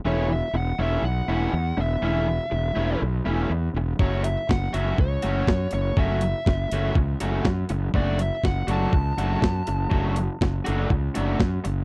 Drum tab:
HH |----------------|----------------|--x---x---x---x-|--x---x---x---x-|
SD |----------------|----------------|----oo------o---|----o-------o---|
BD |----------------|----------------|o---o---o---o---|o---o---o---o---|

HH |--x---x---x---x-|--x---x---x---x-|
SD |----o-------o---|----o-------o---|
BD |o---o---o---o---|o---o---o---o---|